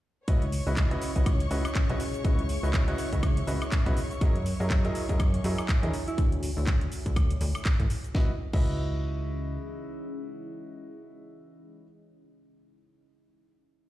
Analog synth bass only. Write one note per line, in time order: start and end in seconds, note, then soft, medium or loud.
0.28 0.61 C#2 medium
0.67 0.97 C#2 medium
1.16 1.46 C#2 medium
1.51 1.61 C#2 medium
1.90 1.97 B1 medium
2.25 2.57 C#2 medium
2.63 2.94 C#2 medium
3.13 3.43 C#2 loud
3.48 3.58 C#2 medium
3.86 3.94 B1 medium
4.21 4.54 F#2 loud
4.60 4.91 F#2 medium
5.09 5.40 F#2 medium
5.44 5.55 F#2 medium
5.83 5.91 E2 medium
6.18 6.51 D2 medium
6.57 6.87 D2 medium
7.06 7.37 D2 medium
7.41 7.51 D2 medium
7.80 7.87 A1 loud
8.15 8.30 C#2 medium
8.53 9.58 C#2 medium